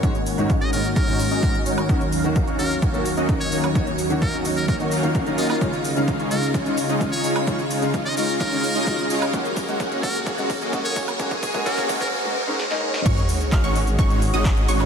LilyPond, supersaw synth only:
\new Staff \with { instrumentName = "Supersaw synth" } { \time 4/4 \key des \major \tempo 4 = 129 <aes des' ees' ges' des''>16 r8. <aes des' ees' ges' f''>16 <aes des' ees' ges' des''>16 r8 <aes des' ees' ges' des''>8 r16 <aes des' ees' ges' ees''>8. <aes des' ees' ges' des''>16 r16 | <bes des' ees' ges' des''>16 r8. <bes des' ees' ges' f''>16 <bes des' ees' ges' des''>16 r8 <bes des' ees' ges' des''>8 r16 <bes des' ees' ges' ees''>8. <bes des' ees' ges' des''>16 r16 | <bes des' ees' ges' des''>16 r8. <bes des' ees' ges' f''>16 <bes des' ees' ges' des''>16 r8 <bes des' ees' ges' des''>8 <bes des' ees' ges' f''>16 r16 <bes des' ees' ges' f''>8 <bes des' ees' ges' ees''>16 r16 | <aes des' ees' f' des''>16 r8. <aes des' ees' f' f''>16 <aes des' ees' f' des''>16 r8 <aes des' ees' f' des''>8 r16 <aes des' ees' f' ees''>8. <aes des' ees' f' des''>16 r16 |
<aes des' ees' f' des''>16 r8. <aes des' ees' f' f''>16 <aes des' ees' f' des''>16 r8 <aes des' ees' f' des''>8 r16 <aes des' ees' f' ees''>8. <aes des' ees' f' des''>16 r16 | <bes des' ges' aes' des''>16 r8. <bes des' ges' aes' ges''>16 <bes des' ges' aes' des''>16 r8 <bes des' ges' aes' des''>8 r16 <bes des' ges' aes' ees''>8. <bes des' ges' aes' des''>16 r16 | <bes des' ges' aes' des''>16 r8. <bes des' ges' aes' ges''>16 <bes des' ges' aes' des''>16 r2 r8 | <aes des' ees' ges' des''>16 r8. <aes des' ees' ges' f''>16 <aes des' ees' ges' des''>16 r8 <aes des' ees' ges' des''>8 r16 <aes des' ees' ges' ees''>8. <aes des' ees' ges' des''>16 r16 | }